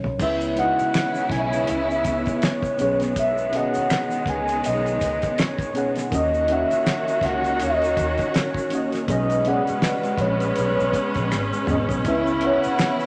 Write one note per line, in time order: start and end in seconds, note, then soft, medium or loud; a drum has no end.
0.00 0.11 B2 medium
0.00 0.12 F#3 medium
0.00 0.13 C#4 medium
0.00 0.13 A#4 medium
0.00 0.14 C#5 medium
0.04 0.18 C2 medium
0.04 floor tom medium
0.19 0.70 C#2 loud
0.19 0.53 C#3 medium
0.19 2.77 C#3 medium
0.19 0.54 G#3 medium
0.19 6.09 B3 medium
0.19 2.77 C#4 medium
0.19 0.55 E4 medium
0.19 2.77 E4 medium
0.19 0.55 B4 medium
0.19 0.35 E5 loud
0.19 kick loud
0.19 crash medium
0.19 shaker medium
0.23 0.56 E5 medium
0.41 closed hi-hat soft
0.41 shaker soft
0.55 1.94 C#3 medium
0.55 1.94 G#3 medium
0.55 0.64 D#4 medium
0.55 1.95 B4 medium
0.55 1.27 F#5 loud
0.55 closed hi-hat medium
0.60 1.96 D#5 medium
0.64 1.98 E4 medium
0.79 muted fingered electric bass stroke soft
0.79 closed hi-hat soft
0.79 shaker soft
0.94 finger snap medium
0.94 snare loud
0.94 closed hi-hat medium
0.94 shaker medium
1.15 shaker soft
1.30 1.62 B1 medium
1.30 1.71 G#5 loud
1.30 kick medium
1.30 closed hi-hat medium
1.34 snare soft
1.53 closed hi-hat soft
1.53 shaker medium
1.67 2.00 C#2 medium
1.67 2.46 E5 loud
1.67 closed hi-hat medium
1.67 shaker medium
1.91 shaker soft
2.04 2.24 C#2 medium
2.04 kick medium
2.04 closed hi-hat medium
2.04 shaker soft
2.26 kick medium
2.26 closed hi-hat soft
2.26 shaker soft
2.42 3.01 C#5 loud
2.42 finger snap medium
2.42 snare loud
2.42 closed hi-hat medium
2.42 shaker medium
2.63 kick loud
2.63 closed hi-hat soft
2.63 shaker soft
2.77 3.47 B2 medium
2.77 6.09 D#3 medium
2.77 6.09 G#3 medium
2.77 3.47 B3 medium
2.77 3.48 C#4 medium
2.77 3.49 G#4 medium
2.77 closed hi-hat medium
2.77 shaker medium
2.81 3.62 B1 medium
2.81 3.49 C#5 medium
3.00 snare soft
3.00 closed hi-hat soft
3.00 shaker medium
3.16 3.58 E5 loud
3.16 kick loud
3.16 closed hi-hat medium
3.16 shaker medium
3.38 shaker soft
3.52 4.90 B2 medium
3.52 4.91 B3 medium
3.52 4.91 C#4 medium
3.52 4.92 G#4 medium
3.52 closed hi-hat medium
3.56 4.93 D#5 medium
3.56 4.31 F#5 loud
3.74 muted fingered electric bass stroke soft
3.74 closed hi-hat soft
3.74 shaker medium
3.90 finger snap medium
3.90 snare loud
3.90 closed hi-hat medium
3.90 shaker medium
4.11 closed hi-hat soft
4.11 shaker soft
4.26 4.59 C#2 medium
4.26 4.67 G#5 loud
4.26 kick medium
4.26 closed hi-hat medium
4.48 closed hi-hat medium
4.48 shaker soft
4.64 4.97 B1 medium
4.64 5.39 D#5 loud
4.64 closed hi-hat medium
4.64 shaker medium
4.86 closed hi-hat soft
4.86 shaker soft
5.01 5.20 C#2 medium
5.01 kick medium
5.01 closed hi-hat medium
5.01 shaker soft
5.22 kick loud
5.22 closed hi-hat soft
5.22 shaker soft
5.38 5.93 C#5 medium
5.38 finger snap medium
5.38 snare loud
5.38 closed hi-hat medium
5.38 shaker medium
5.58 kick loud
5.58 closed hi-hat soft
5.58 shaker medium
5.73 6.09 B2 medium
5.73 6.09 B3 medium
5.73 6.09 C#4 medium
5.73 6.10 G#4 medium
5.73 closed hi-hat medium
5.73 shaker medium
5.78 6.11 F#5 medium
5.96 snare soft
5.96 closed hi-hat soft
5.96 shaker medium
6.10 6.62 D#2 loud
6.10 6.45 D#3 medium
6.10 9.06 D#3 medium
6.10 6.46 A#3 medium
6.10 6.47 C#4 medium
6.10 9.06 C#4 medium
6.10 6.47 F#4 medium
6.10 9.06 F#4 medium
6.10 kick loud
6.10 closed hi-hat medium
6.10 shaker medium
6.14 9.06 A#3 medium
6.14 6.48 D#5 medium
6.14 6.53 D#5 loud
6.34 shaker soft
6.48 7.86 D#3 medium
6.48 7.87 A#3 medium
6.48 7.87 C#4 medium
6.48 7.88 F#4 medium
6.48 closed hi-hat medium
6.52 7.27 E5 loud
6.52 7.89 F#5 medium
6.71 muted fingered electric bass stroke soft
6.71 closed hi-hat soft
6.71 shaker soft
6.86 finger snap medium
6.86 snare loud
6.86 closed hi-hat medium
6.86 shaker medium
7.08 closed hi-hat soft
7.08 shaker soft
7.21 7.63 C#2 medium
7.21 7.63 F#5 medium
7.21 kick medium
7.21 snare soft
7.21 closed hi-hat medium
7.44 closed hi-hat soft
7.44 shaker medium
7.60 7.93 D#2 loud
7.60 8.28 D#5 loud
7.60 closed hi-hat loud
7.60 shaker medium
7.82 closed hi-hat soft
7.82 shaker soft
7.97 8.16 D#2 loud
7.97 kick medium
7.97 closed hi-hat medium
7.97 shaker medium
8.18 kick medium
8.18 closed hi-hat soft
8.18 shaker soft
8.28 8.37 D#5 medium
8.34 8.93 C#5 medium
8.34 finger snap medium
8.34 snare loud
8.34 closed hi-hat medium
8.34 shaker medium
8.54 kick loud
8.54 shaker medium
8.69 9.05 D#3 medium
8.69 9.06 A#3 medium
8.69 9.06 C#4 medium
8.69 closed hi-hat medium
8.69 shaker soft
8.74 9.07 F#4 medium
8.74 9.08 D#5 medium
8.92 snare soft
8.92 closed hi-hat medium
8.92 shaker medium
9.06 9.59 B1 loud
9.06 9.42 B2 medium
9.06 12.02 G#3 medium
9.06 9.42 B3 medium
9.06 12.02 B3 medium
9.06 9.43 C#4 medium
9.06 13.06 C#4 medium
9.06 9.43 G#4 medium
9.06 9.49 D#5 loud
9.06 kick loud
9.06 closed hi-hat medium
9.06 shaker medium
9.11 9.44 D#5 medium
9.30 closed hi-hat soft
9.30 shaker soft
9.44 10.83 C#3 medium
9.44 10.83 B3 medium
9.44 10.84 C#4 medium
9.44 10.85 G#4 medium
9.44 10.22 F#5 loud
9.44 closed hi-hat medium
9.49 9.55 D5 medium
9.55 10.88 D#5 medium
9.67 muted fingered electric bass stroke soft
9.67 closed hi-hat soft
9.67 shaker medium
9.82 finger snap medium
9.82 snare loud
9.82 closed hi-hat medium
9.82 shaker medium
10.03 closed hi-hat soft
10.03 shaker soft
10.18 10.51 A#1 loud
10.18 11.68 C#5 medium
10.18 kick medium
10.18 closed hi-hat medium
10.40 closed hi-hat soft
10.40 shaker medium
10.56 10.76 B1 medium
10.56 closed hi-hat medium
10.56 shaker medium
10.80 10.92 B1 medium
10.80 shaker soft
10.93 kick medium
10.93 closed hi-hat medium
10.93 shaker soft
11.14 11.30 A#1 medium
11.14 kick medium
11.14 closed hi-hat soft
11.14 shaker soft
11.32 11.50 G#1 loud
11.32 finger snap medium
11.32 snare medium
11.32 shaker medium
11.53 shaker medium
11.66 12.01 B2 medium
11.66 12.02 B3 medium
11.66 12.03 C#4 medium
11.66 12.03 G#4 medium
11.66 mid tom loud
11.66 shaker soft
11.70 11.87 G#1 medium
11.70 12.04 D#5 medium
11.89 12.04 B1 medium
11.89 floor tom loud
11.89 shaker medium
12.04 12.55 C#2 loud
12.04 12.39 C#3 medium
12.04 13.06 C#3 medium
12.04 13.06 B3 medium
12.04 12.39 C#4 medium
12.04 13.06 E4 medium
12.04 12.40 E4 medium
12.04 12.41 B4 medium
12.04 12.46 E5 medium
12.04 kick loud
12.04 closed hi-hat medium
12.04 shaker medium
12.09 12.41 E5 medium
12.27 shaker soft
12.41 13.06 C#3 medium
12.41 13.06 C#4 medium
12.41 13.06 E4 medium
12.41 13.06 F#5 loud
12.41 closed hi-hat medium
12.45 13.06 B4 medium
12.45 13.06 C#5 medium
12.64 muted fingered electric bass stroke soft
12.64 closed hi-hat medium
12.64 shaker soft
12.79 finger snap medium
12.79 snare loud
12.79 closed hi-hat medium
12.79 shaker medium
13.00 closed hi-hat soft
13.00 shaker soft